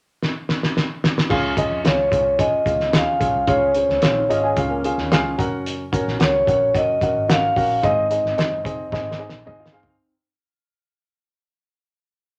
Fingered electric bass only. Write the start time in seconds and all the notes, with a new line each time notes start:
1.30 C#2
1.71 F2
1.84 C#2
2.12 C2
2.53 muted fingered electric bass stroke
2.66 C#2
2.93 D#2
3.21 B1
3.34 C2
3.48 C#2
3.89 C#2
4.02 A#1
4.29 G#1
4.57 C#2
4.98 D#2
5.11 C#2
5.39 F#1
6.06 A#1
6.20 C#2
6.47 A#1
6.75 F#1
7.15 G#1
7.56 A#1
7.84 G#1
8.24 G#1
8.38 F#1
8.65 F1
8.92 G#1
9.33 A#1
9.73 G1